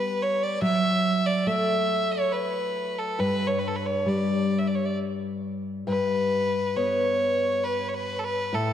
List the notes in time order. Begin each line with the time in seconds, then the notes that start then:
Already playing: G3 B3 B4
0.22 C#5
0.43 D5
0.62 F#3 E5
1.26 D5
1.47 A3 E5
2.11 C#5
2.32 B4
2.98 A4
3.19 G2 B4
3.47 C#5
3.59 B4
3.68 A4
3.76 B4
3.86 C#5
4.06 G3 D5
4.59 E5
4.67 D5
4.75 C#5
4.85 D5
5.87 G2 B4
6.77 B3 C#5
7.64 B4
7.88 C#5
7.94 B4
8.19 A4
8.24 B4
8.53 A2 A4